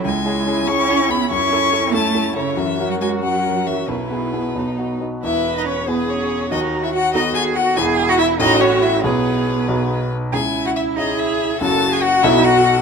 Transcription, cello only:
X:1
M:6/8
L:1/16
Q:3/8=94
K:E
V:1 name="Cello"
G,6 C4 B,2 | C6 A,4 C,2 | E,3 F, G,2 F,4 E,2 | B,,8- B,,2 z2 |
E3 D C2 B,2 C4 | D3 E F2 D2 G2 F2 | G3 F E2 D2 C2 E2 | B,8- B,2 z2 |
G3 F E2 D2 E4 | A3 G F2 E2 F4 |]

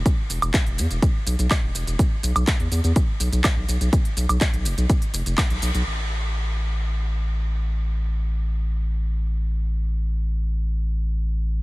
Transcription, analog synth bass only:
X:1
M:4/4
L:1/16
Q:1/4=124
K:Ephr
V:1 name="Analog synth bass" clef=bass
z2 E,,, E,,, z E,,, E,, E,,, z2 B,,, B,,, z E,,, E,,, E,,, | z2 B,,, B,,, z E,, E,, E,, z2 B,,, B,,, z B,,, B,,, B,,, | z2 B,,, B,,, z B,,, F,,, B,,, z2 F,,, F,,, z B,,, B,,, B,,, | A,,,16- |
A,,,16- | A,,,16 |]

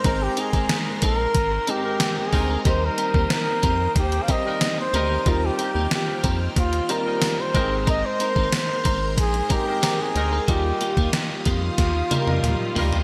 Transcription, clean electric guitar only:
X:1
M:4/4
L:1/16
Q:1/4=92
K:Eb
V:1 name="Clean electric guitar"
[CEB] z [CEB] [CEB] z2 [CEB] z3 [CEB] z3 [CEB] [CEB] | [CGB] z [CGB] [CGB] z2 [CGB] z3 [CGB] z3 [CGB] [CGB] | [CGB] z [CGB] [CGB] z2 [CGB] z3 [CGB] z3 [CEB] z | [CEB] z [CEB] [CEB] z2 [CEB] z3 [CEB] z [CEB] z2 [CEB] |
[B,FG] z [B,FG] [B,FG] z2 [B,FG] z3 [B,FG] z3 [B,FG] [B,FG] |]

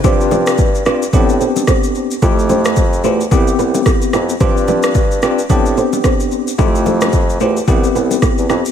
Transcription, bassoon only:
X:1
M:4/4
L:1/16
Q:"Swing 16ths" 1/4=110
K:C
V:1 name="Bassoon" clef=bass
G,,6 G,,2 A,,3 z4 z | F,,6 E,,2 C,,2 C,,2 z2 F,,2 | G,,6 G,,2 A,,3 z4 z | F,,6 E,,2 C,,2 C,,2 z E,, F,, z |]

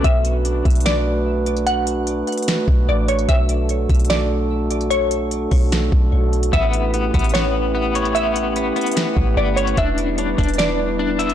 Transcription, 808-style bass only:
X:1
M:4/4
L:1/8
Q:1/4=148
K:Bm
V:1 name="808-style bass" clef=bass
B,,,3 B,,,4- B,,,- | B,,,3 z2 B,,, A,,,2 | B,,,3 B,,,4- B,,,- | B,,,3 B,,,2 B,,, B,,,2 |
A,,,3 A,,,4- A,,,- | A,,,3 z2 A,,, G,,,2 | E,,,3 E,,,4- E,,, |]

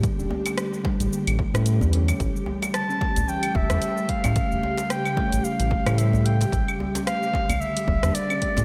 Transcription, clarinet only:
X:1
M:4/4
L:1/8
Q:"Swing 16ths" 1/4=111
K:none
V:1 name="Clarinet"
z8 | z2 a2 g e2 f- | f2 g2 f2 e g- | g z f2 e2 d2 |]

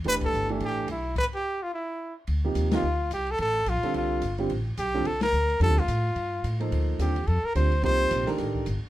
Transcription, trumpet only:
X:1
M:4/4
L:1/8
Q:"Swing" 1/4=216
K:Am
V:1 name="Trumpet"
B A2 z G2 E2 | B G2 F E3 z | [K:Dphr] z3 F3 G A | A2 F2 F3 z |
z2 G2 A B3 | A F6 z | z2 G2 A B c2 | c4 z4 |]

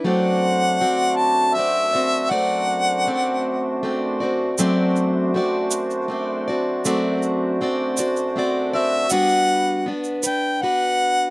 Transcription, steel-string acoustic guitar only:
X:1
M:3/4
L:1/8
Q:1/4=80
K:Dmix
V:1 name="Steel-string acoustic guitar"
[F,A,CFd]2 [A,CFd]2 [A,CFd] [CFd] | [F,A,CFd]2 [A,CFd]2 [A,CFd] [CFd] | [F,A,CFd]2 [A,CFd]2 [A,CFd] [CFd] | [F,A,CFd]2 [A,CFd] [CFd] [A,CFd] [CFd] |
[G,B,DFB]2 [B,DFB] [DB] [B,DFB]2 |]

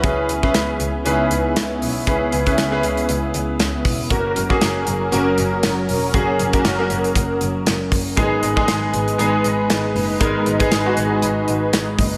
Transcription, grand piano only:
X:1
M:4/4
L:1/16
Q:"Swing 16ths" 1/4=118
K:C#dor
V:1 name="Grand piano"
[CEGB]2 z [CEGB]4 z [CDEGB]6 z2 | [CEGB]2 z [CEGB] z [CEGB]6 z4 z | [A,CFA]2 z [A,CFG]4 z [A,CFA]6 z2 | [A,CFG]2 z [A,CFA] z [A,CFA]6 z4 z |
[G,B,DG]2 z [G,B,DG]4 z [G,B,DG]6 z2 | [G,B,DA]2 z [G,B,DG] z [G,B,DF]6 z4 z |]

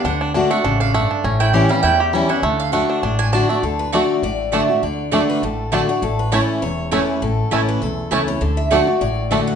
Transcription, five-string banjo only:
X:1
M:4/4
L:1/8
Q:"Swing" 1/4=201
K:D
V:1 name="Five-string banjo"
D D D A, D D A, D | C E G G, E G G, E | A,2 A, D D D D A, | z2 [A,D] z3 [A,D] z |
z2 [A,D] z3 [A,D] z | z2 [A,CE] z3 [A,CE] z | z2 [A,CE] z3 [A,CE] z | z2 [A,D] z3 [A,D] z |]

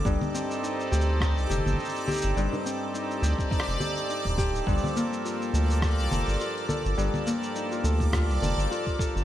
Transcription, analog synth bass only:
X:1
M:4/4
L:1/16
Q:"Swing 16ths" 1/4=104
K:Gm
V:1 name="Analog synth bass" clef=bass
G,,, z4 z D,,3 C,, F,,, G,,, z3 G,,, | G,,, z4 z D,, z2 F,,, z3 D,,,3 | G,,, z4 z D,,3 C,, F,,, G,,, z3 G,,, | G,,, z4 z D,,3 C,, F,,, G,,, z3 G,,, |]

